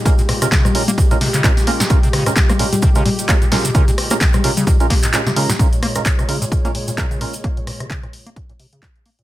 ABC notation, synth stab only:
X:1
M:4/4
L:1/16
Q:"Swing 16ths" 1/4=130
K:Bbdor
V:1 name="Synth stab"
[A,DFB] z2 [A,DFB] z2 [A,DFB] z2 [A,DFB] z2 [A,DFB] z [A,DFB] z | [A,DFB] z2 [A,DFB] z2 [A,DFB] z2 [A,DFB] z2 [A,DFB] z [A,DFB] z | [A,DFB] z2 [A,DFB] z2 [A,DFB] z2 [A,DFB] z2 [A,DFB] z [A,DFB] z | [A,DFB] z2 [A,DFB] z2 [A,DFB] z2 [A,DFB] z2 [A,DFB] z [A,DFB] z |
z16 |]